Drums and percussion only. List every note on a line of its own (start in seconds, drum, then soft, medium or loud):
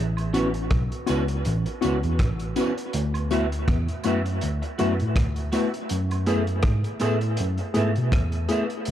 0.17 closed hi-hat soft
0.17 high woodblock medium
0.34 closed hi-hat medium
0.34 tambourine soft
0.54 closed hi-hat soft
0.71 kick loud
0.71 cross-stick medium
0.71 closed hi-hat medium
0.92 closed hi-hat soft
1.07 closed hi-hat medium
1.07 tambourine medium
1.07 high woodblock medium
1.28 closed hi-hat medium
1.45 closed hi-hat medium
1.66 closed hi-hat soft
1.82 closed hi-hat medium
1.82 tambourine medium
2.03 closed hi-hat soft
2.19 kick loud
2.19 cross-stick loud
2.19 closed hi-hat loud
2.40 closed hi-hat soft
2.56 closed hi-hat medium
2.56 tambourine medium
2.78 closed hi-hat medium
2.93 closed hi-hat medium
3.14 closed hi-hat soft
3.14 high woodblock medium
3.31 closed hi-hat medium
3.31 tambourine soft
3.52 closed hi-hat soft
3.68 kick loud
3.68 cross-stick medium
3.68 closed hi-hat medium
3.88 closed hi-hat soft
4.04 closed hi-hat medium
4.04 tambourine medium
4.04 high woodblock medium
4.26 closed hi-hat soft
4.41 closed hi-hat medium
4.63 closed hi-hat soft
4.79 closed hi-hat medium
4.79 tambourine medium
5.00 closed hi-hat soft
5.16 kick loud
5.16 cross-stick loud
5.16 closed hi-hat loud
5.36 closed hi-hat soft
5.52 closed hi-hat medium
5.52 tambourine medium
5.74 closed hi-hat medium
5.89 closed hi-hat loud
6.11 closed hi-hat soft
6.11 high woodblock medium
6.26 closed hi-hat medium
6.26 tambourine soft
6.47 closed hi-hat soft
6.63 kick loud
6.63 cross-stick loud
6.63 closed hi-hat medium
6.84 closed hi-hat soft
7.00 closed hi-hat medium
7.00 tambourine medium
7.00 high woodblock medium
7.21 closed hi-hat soft
7.37 closed hi-hat medium
7.58 closed hi-hat soft
7.74 closed hi-hat medium
7.74 tambourine soft
7.96 closed hi-hat soft
8.12 kick loud
8.12 cross-stick loud
8.12 closed hi-hat loud
8.32 closed hi-hat soft
8.49 closed hi-hat medium
8.49 tambourine medium
8.70 closed hi-hat soft
8.85 closed hi-hat medium